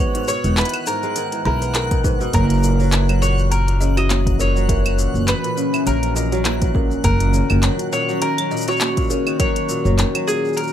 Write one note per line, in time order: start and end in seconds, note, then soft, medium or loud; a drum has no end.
0.00 0.14 G#2 medium
0.00 0.33 D#3 medium
0.00 0.33 E3 medium
0.00 0.14 B4 medium
0.00 0.27 C#5 medium
0.00 10.73 F#5 medium
0.00 10.73 F#6 medium
0.15 0.33 G#2 medium
0.15 closed hi-hat soft
0.15 shaker soft
0.24 0.47 B2 medium
0.24 shaker soft
0.28 0.57 C#5 medium
0.28 shaker medium
0.44 0.61 E1 medium
0.44 1.15 D#3 medium
0.44 closed hi-hat soft
0.44 shaker soft
0.57 1.21 E3 medium
0.57 0.85 B4 medium
0.57 clap loud
0.57 closed hi-hat soft
0.57 shaker soft
0.61 closed hi-hat soft
0.65 closed hi-hat soft
0.69 closed hi-hat soft
0.74 closed hi-hat soft
0.74 claves medium
0.74 shaker soft
0.87 2.03 G#2 medium
0.87 1.45 A#4 medium
0.87 shaker medium
1.03 1.21 G#3 loud
1.03 shaker soft
1.16 1.90 D#3 medium
1.16 closed hi-hat medium
1.16 shaker soft
1.32 1.44 E3 medium
1.32 closed hi-hat soft
1.32 shaker soft
1.45 2.26 B1 medium
1.45 1.94 E3 loud
1.45 2.01 A#4 medium
1.45 1.61 B5 loud
1.62 1.69 B4 medium
1.62 closed hi-hat soft
1.62 shaker soft
1.75 1.91 A#4 medium
1.75 clap loud
1.75 closed hi-hat medium
1.75 shaker soft
1.91 2.24 D#3 medium
1.91 kick loud
1.91 closed hi-hat soft
1.91 shaker soft
2.04 2.24 G#2 medium
2.04 2.20 B4 medium
2.04 kick loud
2.04 shaker medium
2.21 2.38 B2 loud
2.21 shaker soft
2.33 5.05 F#1 loud
2.33 7.04 E3 medium
2.33 2.78 F#3 medium
2.33 2.49 A#4 medium
2.33 3.21 A#4 loud
2.33 kick loud
2.33 closed hi-hat medium
2.33 shaker soft
2.50 closed hi-hat soft
2.50 shaker soft
2.54 shaker soft
2.57 shaker soft
2.60 3.20 A#2 medium
2.60 shaker soft
2.63 shaker medium
2.80 3.07 F#3 loud
2.80 shaker soft
2.83 10.73 A#2 medium
2.83 shaker soft
2.86 shaker soft
2.89 3.27 E3 medium
2.89 clap loud
2.89 closed hi-hat medium
2.89 shaker soft
2.93 10.73 C#4 medium
2.93 shaker soft
2.97 shaker soft
3.01 shaker soft
3.05 3.86 F#3 medium
3.05 closed hi-hat soft
3.05 claves medium
3.05 shaker soft
3.09 shaker soft
3.22 3.66 A#2 medium
3.22 3.49 C#5 loud
3.22 shaker medium
3.39 shaker soft
3.51 10.73 F#4 medium
3.51 3.97 A#4 medium
3.51 closed hi-hat medium
3.51 shaker soft
3.67 3.86 A#2 medium
3.67 closed hi-hat soft
3.67 shaker soft
3.81 4.44 C#3 medium
3.81 3.96 D#5 medium
3.81 shaker medium
3.97 4.44 E3 medium
3.97 4.10 F#4 medium
3.97 4.40 D#5 loud
3.97 closed hi-hat soft
3.97 claves medium
3.97 shaker soft
4.10 4.54 F#3 medium
4.10 4.26 A#3 medium
4.10 clap medium
4.10 closed hi-hat medium
4.10 shaker soft
4.27 kick loud
4.27 closed hi-hat soft
4.27 shaker soft
4.39 4.96 A#2 medium
4.39 4.55 A#4 medium
4.39 5.28 C#5 medium
4.39 shaker medium
4.55 4.83 F#3 medium
4.55 shaker soft
4.68 5.03 E3 medium
4.68 4.85 A#4 medium
4.68 kick loud
4.68 closed hi-hat medium
4.68 shaker soft
4.85 5.62 F#3 medium
4.85 closed hi-hat soft
4.85 claves medium
4.85 shaker soft
4.98 5.42 A#2 medium
4.98 shaker medium
5.14 5.31 F#1 medium
5.14 shaker soft
5.28 5.83 B4 medium
5.28 clap loud
5.28 closed hi-hat medium
5.28 shaker soft
5.44 5.62 A#2 medium
5.44 closed hi-hat soft
5.44 shaker soft
5.56 6.21 C#3 medium
5.56 shaker medium
5.73 6.21 E3 medium
5.73 claves medium
5.73 shaker soft
5.86 6.96 A#1 loud
5.86 6.31 F#3 medium
5.86 6.15 A#4 medium
5.86 closed hi-hat medium
5.86 shaker soft
6.03 closed hi-hat soft
6.03 shaker soft
6.16 6.73 A#2 medium
6.16 6.71 A#4 medium
6.16 6.32 D#5 medium
6.16 shaker medium
6.32 6.60 F#3 loud
6.32 6.45 F#4 medium
6.32 closed hi-hat soft
6.32 shaker soft
6.45 6.80 E3 medium
6.45 6.61 A#3 medium
6.45 clap medium
6.45 closed hi-hat medium
6.45 shaker soft
6.61 7.09 F#3 medium
6.61 kick loud
6.61 closed hi-hat soft
6.61 shaker soft
6.74 7.09 A#2 medium
6.74 6.91 A#4 medium
6.74 kick loud
6.91 shaker soft
7.03 7.40 F#1 loud
7.03 10.73 D#3 medium
7.03 7.59 A#4 loud
7.03 7.20 A#4 medium
7.03 kick loud
7.03 closed hi-hat medium
7.03 shaker soft
7.20 7.38 A#2 medium
7.20 closed hi-hat soft
7.20 shaker soft
7.33 7.53 C#3 medium
7.33 shaker medium
7.50 7.67 F#1 medium
7.50 7.97 D#3 medium
7.50 claves medium
7.50 shaker soft
7.63 8.07 F#3 medium
7.63 clap loud
7.63 closed hi-hat medium
7.63 shaker soft
7.79 closed hi-hat soft
7.79 shaker soft
7.92 8.27 A#2 medium
7.92 8.20 C#5 loud
7.92 shaker medium
8.08 8.27 F#3 loud
8.08 shaker soft
8.22 8.56 D#3 medium
8.22 8.68 A#4 loud
8.22 closed hi-hat medium
8.22 shaker soft
8.38 9.15 F#3 medium
8.38 closed hi-hat soft
8.38 claves medium
8.38 shaker soft
8.51 8.95 A#2 medium
8.51 8.67 D#5 medium
8.51 shaker soft
8.57 shaker soft
8.61 shaker medium
8.68 8.80 F#4 medium
8.68 9.38 C#5 loud
8.68 closed hi-hat soft
8.68 shaker soft
8.77 shaker soft
8.81 8.97 A#3 medium
8.81 clap loud
8.81 closed hi-hat medium
8.81 shaker soft
8.96 9.15 A#2 medium
8.96 kick loud
8.96 closed hi-hat soft
8.96 shaker soft
9.01 shaker soft
9.04 shaker soft
9.07 9.30 C#3 medium
9.07 9.26 A#4 medium
9.07 shaker soft
9.10 shaker medium
9.26 9.74 D#3 medium
9.26 claves medium
9.26 shaker soft
9.39 9.84 F#3 medium
9.39 9.55 A#4 medium
9.39 10.30 C#5 loud
9.39 kick loud
9.39 closed hi-hat medium
9.39 shaker soft
9.56 closed hi-hat soft
9.56 shaker soft
9.69 10.03 A#2 medium
9.69 shaker medium
9.85 10.02 F#1 medium
9.85 10.03 F#3 loud
9.85 shaker soft
9.98 10.33 D#3 medium
9.98 clap loud
9.98 closed hi-hat medium
9.98 shaker soft
10.15 10.73 F#3 medium
10.15 closed hi-hat soft
10.15 claves medium
10.15 shaker soft
10.27 10.72 A#2 medium
10.27 10.58 G#4 medium
10.27 shaker medium
10.45 shaker soft
10.48 shaker soft
10.53 10.73 A#4 medium
10.53 shaker soft
10.57 closed hi-hat medium
10.57 shaker soft
10.63 shaker soft
10.67 shaker soft